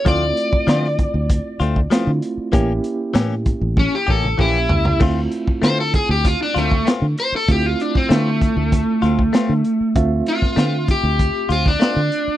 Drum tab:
CC |----------------|----------------|x---------------|----------------|
HH |x-x-x-x-x-x-x-x-|x-x-x-x---------|--x-x-x-x-x-x-x-|x-x-x-x-x-x-x-x-|
SD |----oo------o---|----o-----------|----o-------o---|----o-------o---|
T1 |----------------|--------o-------|----------------|----------------|
T2 |----------------|-----------o----|----------------|----------------|
FT |----------------|--------------oo|----------------|----------------|
BD |o--o--o-o--o----|o-----o-o-o-o---|o--o--o-o--o----|o--o--o-o--o----|

CC |----------------|
HH |x-x-x-x-x-x-x-x-|
SD |---oo-------o---|
T1 |----------------|
T2 |----------------|
FT |----------------|
BD |o--o--o-o--o----|